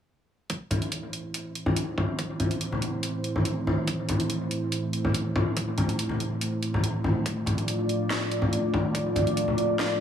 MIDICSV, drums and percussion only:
0, 0, Header, 1, 2, 480
1, 0, Start_track
1, 0, Key_signature, 0, "minor"
1, 0, Tempo, 422535
1, 565, Time_signature, 4, 2, 24, 8
1, 11363, End_track
2, 0, Start_track
2, 0, Title_t, "Drums"
2, 565, Note_on_c, 9, 42, 71
2, 566, Note_on_c, 9, 36, 107
2, 679, Note_off_c, 9, 42, 0
2, 680, Note_off_c, 9, 36, 0
2, 802, Note_on_c, 9, 64, 79
2, 806, Note_on_c, 9, 42, 51
2, 916, Note_off_c, 9, 64, 0
2, 919, Note_off_c, 9, 42, 0
2, 930, Note_on_c, 9, 42, 36
2, 1043, Note_off_c, 9, 42, 0
2, 1043, Note_on_c, 9, 42, 75
2, 1157, Note_off_c, 9, 42, 0
2, 1285, Note_on_c, 9, 42, 52
2, 1399, Note_off_c, 9, 42, 0
2, 1525, Note_on_c, 9, 42, 71
2, 1638, Note_off_c, 9, 42, 0
2, 1765, Note_on_c, 9, 42, 50
2, 1879, Note_off_c, 9, 42, 0
2, 1888, Note_on_c, 9, 64, 87
2, 2001, Note_off_c, 9, 64, 0
2, 2004, Note_on_c, 9, 42, 76
2, 2118, Note_off_c, 9, 42, 0
2, 2246, Note_on_c, 9, 36, 56
2, 2246, Note_on_c, 9, 64, 83
2, 2359, Note_off_c, 9, 36, 0
2, 2359, Note_off_c, 9, 64, 0
2, 2484, Note_on_c, 9, 42, 72
2, 2485, Note_on_c, 9, 36, 112
2, 2597, Note_off_c, 9, 42, 0
2, 2599, Note_off_c, 9, 36, 0
2, 2724, Note_on_c, 9, 42, 53
2, 2724, Note_on_c, 9, 64, 72
2, 2838, Note_off_c, 9, 42, 0
2, 2838, Note_off_c, 9, 64, 0
2, 2850, Note_on_c, 9, 42, 36
2, 2963, Note_off_c, 9, 42, 0
2, 2964, Note_on_c, 9, 42, 71
2, 3077, Note_off_c, 9, 42, 0
2, 3095, Note_on_c, 9, 63, 62
2, 3204, Note_on_c, 9, 42, 53
2, 3209, Note_off_c, 9, 63, 0
2, 3318, Note_off_c, 9, 42, 0
2, 3442, Note_on_c, 9, 42, 70
2, 3556, Note_off_c, 9, 42, 0
2, 3682, Note_on_c, 9, 42, 49
2, 3796, Note_off_c, 9, 42, 0
2, 3814, Note_on_c, 9, 64, 73
2, 3922, Note_on_c, 9, 42, 76
2, 3927, Note_off_c, 9, 64, 0
2, 4035, Note_off_c, 9, 42, 0
2, 4171, Note_on_c, 9, 64, 79
2, 4285, Note_off_c, 9, 64, 0
2, 4402, Note_on_c, 9, 42, 73
2, 4404, Note_on_c, 9, 36, 112
2, 4515, Note_off_c, 9, 42, 0
2, 4517, Note_off_c, 9, 36, 0
2, 4642, Note_on_c, 9, 42, 53
2, 4649, Note_on_c, 9, 64, 68
2, 4755, Note_off_c, 9, 42, 0
2, 4763, Note_off_c, 9, 64, 0
2, 4769, Note_on_c, 9, 42, 37
2, 4881, Note_off_c, 9, 42, 0
2, 4881, Note_on_c, 9, 42, 73
2, 4995, Note_off_c, 9, 42, 0
2, 5123, Note_on_c, 9, 42, 48
2, 5237, Note_off_c, 9, 42, 0
2, 5362, Note_on_c, 9, 42, 71
2, 5476, Note_off_c, 9, 42, 0
2, 5603, Note_on_c, 9, 42, 49
2, 5716, Note_off_c, 9, 42, 0
2, 5732, Note_on_c, 9, 64, 77
2, 5844, Note_on_c, 9, 42, 72
2, 5846, Note_off_c, 9, 64, 0
2, 5958, Note_off_c, 9, 42, 0
2, 6085, Note_on_c, 9, 36, 58
2, 6085, Note_on_c, 9, 64, 86
2, 6199, Note_off_c, 9, 36, 0
2, 6199, Note_off_c, 9, 64, 0
2, 6323, Note_on_c, 9, 42, 73
2, 6325, Note_on_c, 9, 36, 109
2, 6437, Note_off_c, 9, 42, 0
2, 6438, Note_off_c, 9, 36, 0
2, 6562, Note_on_c, 9, 42, 49
2, 6563, Note_on_c, 9, 64, 80
2, 6676, Note_off_c, 9, 42, 0
2, 6677, Note_off_c, 9, 64, 0
2, 6691, Note_on_c, 9, 42, 36
2, 6804, Note_off_c, 9, 42, 0
2, 6804, Note_on_c, 9, 42, 67
2, 6918, Note_off_c, 9, 42, 0
2, 6922, Note_on_c, 9, 63, 57
2, 7036, Note_off_c, 9, 63, 0
2, 7046, Note_on_c, 9, 42, 47
2, 7160, Note_off_c, 9, 42, 0
2, 7286, Note_on_c, 9, 42, 72
2, 7399, Note_off_c, 9, 42, 0
2, 7526, Note_on_c, 9, 42, 45
2, 7640, Note_off_c, 9, 42, 0
2, 7658, Note_on_c, 9, 64, 77
2, 7766, Note_on_c, 9, 42, 67
2, 7772, Note_off_c, 9, 64, 0
2, 7880, Note_off_c, 9, 42, 0
2, 8001, Note_on_c, 9, 64, 82
2, 8115, Note_off_c, 9, 64, 0
2, 8245, Note_on_c, 9, 36, 108
2, 8246, Note_on_c, 9, 42, 67
2, 8359, Note_off_c, 9, 36, 0
2, 8359, Note_off_c, 9, 42, 0
2, 8478, Note_on_c, 9, 64, 65
2, 8486, Note_on_c, 9, 42, 48
2, 8592, Note_off_c, 9, 64, 0
2, 8600, Note_off_c, 9, 42, 0
2, 8611, Note_on_c, 9, 42, 35
2, 8724, Note_off_c, 9, 42, 0
2, 8725, Note_on_c, 9, 42, 68
2, 8838, Note_off_c, 9, 42, 0
2, 8966, Note_on_c, 9, 42, 48
2, 9080, Note_off_c, 9, 42, 0
2, 9206, Note_on_c, 9, 38, 100
2, 9206, Note_on_c, 9, 42, 66
2, 9320, Note_off_c, 9, 38, 0
2, 9320, Note_off_c, 9, 42, 0
2, 9446, Note_on_c, 9, 42, 46
2, 9560, Note_off_c, 9, 42, 0
2, 9564, Note_on_c, 9, 64, 78
2, 9678, Note_off_c, 9, 64, 0
2, 9688, Note_on_c, 9, 42, 72
2, 9801, Note_off_c, 9, 42, 0
2, 9925, Note_on_c, 9, 36, 57
2, 9928, Note_on_c, 9, 64, 91
2, 10038, Note_off_c, 9, 36, 0
2, 10042, Note_off_c, 9, 64, 0
2, 10164, Note_on_c, 9, 36, 106
2, 10165, Note_on_c, 9, 42, 68
2, 10278, Note_off_c, 9, 36, 0
2, 10279, Note_off_c, 9, 42, 0
2, 10403, Note_on_c, 9, 64, 77
2, 10407, Note_on_c, 9, 42, 45
2, 10516, Note_off_c, 9, 64, 0
2, 10521, Note_off_c, 9, 42, 0
2, 10532, Note_on_c, 9, 42, 36
2, 10645, Note_off_c, 9, 42, 0
2, 10645, Note_on_c, 9, 42, 65
2, 10759, Note_off_c, 9, 42, 0
2, 10768, Note_on_c, 9, 63, 61
2, 10882, Note_off_c, 9, 63, 0
2, 10883, Note_on_c, 9, 42, 48
2, 10997, Note_off_c, 9, 42, 0
2, 11124, Note_on_c, 9, 38, 102
2, 11124, Note_on_c, 9, 42, 64
2, 11237, Note_off_c, 9, 38, 0
2, 11237, Note_off_c, 9, 42, 0
2, 11363, End_track
0, 0, End_of_file